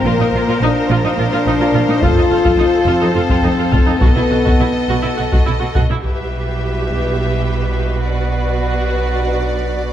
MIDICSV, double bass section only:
0, 0, Header, 1, 2, 480
1, 0, Start_track
1, 0, Tempo, 564972
1, 43, Time_signature, 7, 3, 24, 8
1, 2684, Tempo, 576923
1, 5564, Tempo, 561798
1, 8391, End_track
2, 0, Start_track
2, 0, Title_t, "Double bass section"
2, 0, Program_c, 0, 48
2, 34, Note_on_c, 0, 34, 70
2, 84, Note_off_c, 0, 34, 0
2, 280, Note_on_c, 0, 34, 46
2, 328, Note_off_c, 0, 34, 0
2, 525, Note_on_c, 0, 34, 50
2, 572, Note_off_c, 0, 34, 0
2, 765, Note_on_c, 0, 34, 65
2, 812, Note_off_c, 0, 34, 0
2, 1002, Note_on_c, 0, 34, 46
2, 1049, Note_off_c, 0, 34, 0
2, 1240, Note_on_c, 0, 34, 50
2, 1288, Note_off_c, 0, 34, 0
2, 1477, Note_on_c, 0, 34, 75
2, 1526, Note_off_c, 0, 34, 0
2, 1719, Note_on_c, 0, 29, 65
2, 1767, Note_off_c, 0, 29, 0
2, 1956, Note_on_c, 0, 29, 42
2, 2005, Note_off_c, 0, 29, 0
2, 2192, Note_on_c, 0, 29, 44
2, 2242, Note_off_c, 0, 29, 0
2, 2432, Note_on_c, 0, 29, 59
2, 2483, Note_off_c, 0, 29, 0
2, 2676, Note_on_c, 0, 29, 38
2, 2725, Note_off_c, 0, 29, 0
2, 2911, Note_on_c, 0, 29, 39
2, 2961, Note_off_c, 0, 29, 0
2, 3150, Note_on_c, 0, 29, 60
2, 3200, Note_off_c, 0, 29, 0
2, 3396, Note_on_c, 0, 35, 54
2, 3446, Note_off_c, 0, 35, 0
2, 3641, Note_on_c, 0, 35, 34
2, 3691, Note_off_c, 0, 35, 0
2, 3888, Note_on_c, 0, 35, 38
2, 3937, Note_off_c, 0, 35, 0
2, 4130, Note_on_c, 0, 35, 50
2, 4178, Note_off_c, 0, 35, 0
2, 4376, Note_on_c, 0, 35, 36
2, 4423, Note_off_c, 0, 35, 0
2, 4610, Note_on_c, 0, 35, 38
2, 4658, Note_off_c, 0, 35, 0
2, 4849, Note_on_c, 0, 35, 50
2, 4898, Note_off_c, 0, 35, 0
2, 5088, Note_on_c, 0, 35, 37
2, 8391, Note_off_c, 0, 35, 0
2, 8391, End_track
0, 0, End_of_file